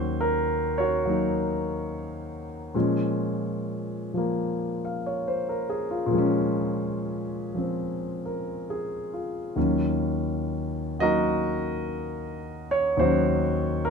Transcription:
Already playing: D#2 D#3 F#3 C#4 F#4 C5
0.21 A#4
0.78 F#4 A#4 C#5
1.05 F#3 A#3 D#4
2.74 A#2 F3 G#3 C#4
4.14 F3 A#3
4.85 F5
5.06 C#5
5.28 C5
5.49 A#4
5.70 G#4
5.91 F4
6.06 A#2
6.10 F3 G#3
6.18 C#4
7.55 F3 C4
8.26 A#4
8.70 G#4
9.13 F4
9.56 D#2 D#3 F#3 C#4
10.99 F#3 A#3 D#4 F#4 A#4 D#5
12.71 C#5
12.97 D#2 D#3 F#3 F#4 C5
13.02 C#4
13.85 A#4

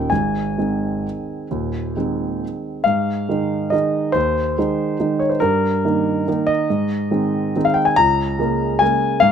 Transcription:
Already playing: D#1 D#2 D#3 A#3 C#4 G5
0.10 G#1 G#2 G#5
0.58 D#3 G#3 C4
1.51 D#1 D#2
1.96 D#3 G#3 C4
2.84 G#2 F5
3.29 D#3 G#3 D#4
3.70 D#3 G#3 D#4 D#5
4.12 D#2 C5
4.58 D#3 G#3 D#4
5.00 D#3 G#3 D#4
5.19 C#5
5.29 C5
5.40 G2 A#4
5.85 D#3 A#3 D#4
6.28 D#3 A#3 D#4
6.47 D#5
6.70 G#2
7.11 D#3 G#3 C4
7.56 D#3 G#3 C4
7.65 F5
7.74 G5
7.85 G#5
7.96 C#2 A#5
8.39 C#3 G#3 A#3
8.79 C#3 G#3 A#3 G#5
9.20 G#2 F5

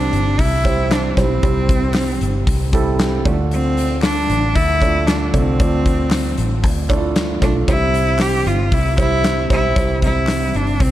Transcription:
Already playing: C3 G3 C4 D4 E4 G4 C5
0.13 G1, hi-hat pedal, open hi-hat
0.39 C2 E4, kick, hi-hat pedal, open hi-hat
0.65 G3 C4 E4 G4 C5, kick, clap, hi-hat pedal, open hi-hat
0.91 D4, snare, clap, hi-hat pedal, open hi-hat
1.17 B1 G3 C4 E4 G4 C5, kick, snare, hi-hat pedal, open hi-hat
1.43 C2 C3 G3 C4 E4 G4 C5, kick, hi-hat pedal, open hi-hat
1.69 kick, hi-hat pedal, open hi-hat
1.94 snare, clap, hi-hat pedal, open hi-hat
2.21 G1, hi-hat pedal, open hi-hat
2.47 C2, kick, hi-hat pedal, open hi-hat
2.73 G3 C4 E4 G4 A4, kick, clap, hi-hat pedal, open hi-hat
2.99 snare, clap, hi-hat pedal, open hi-hat
3.25 D2 D3 A3 D4 F4 A4 D5, kick, hi-hat pedal, open hi-hat
3.51 C4, hi-hat pedal, open hi-hat
3.77 hi-hat pedal, open hi-hat
4.02 D4, snare, clap, hi-hat pedal, open hi-hat
4.30 A1, hi-hat pedal, open hi-hat
4.55 D2 E4, kick, hi-hat pedal, open hi-hat
4.81 A3 D4 F4 A4 D5, kick, clap, hi-hat pedal, open hi-hat
5.07 D4, snare, clap, hi-hat pedal, open hi-hat
5.33 C2 D3 A3 C4 D4 F4 A4 D5, kick, hi-hat pedal, open hi-hat
5.59 D2 A3 D4 F4 A4 D5, kick, hi-hat pedal, open hi-hat
5.85 kick, hi-hat pedal, open hi-hat
6.11 snare, clap, hi-hat pedal, open hi-hat
6.38 A1, hi-hat pedal, open hi-hat
6.64 D2, kick, hi-hat pedal, open hi-hat
6.89 A3 D4 E4 A4 D5, kick, clap, hi-hat pedal, open hi-hat
6.96 F4
7.16 snare, clap, hi-hat pedal, open hi-hat
7.42 B1 A3 D4 F4 A4 D5, kick, snare, hi-hat pedal, open hi-hat
7.68 C2 C3 G3 C4 E4 G4 C5, kick, hi-hat pedal, open hi-hat
7.94 hi-hat pedal, open hi-hat
8.19 G4, snare, clap, hi-hat pedal, open hi-hat
8.46 G1 F4, hi-hat pedal, open hi-hat
8.72 C2 E4, kick, hi-hat pedal, open hi-hat
8.98 G3 C4 E4 G4 C5, kick, clap, hi-hat pedal, open hi-hat
9.24 snare, clap, hi-hat pedal, open hi-hat
9.49 B1 G3 C4 E4 G4 C5, kick, snare, hi-hat pedal, open hi-hat
9.76 C2 C3 G3 C4 E4 G4 C5, kick, hi-hat pedal, open hi-hat
10.02 E4, kick, hi-hat pedal, open hi-hat
10.27 snare, clap, hi-hat pedal, open hi-hat
10.54 G1 D4, hi-hat pedal, open hi-hat
10.67 open hi-hat
10.80 C2 C4, kick, hi-hat pedal, open hi-hat

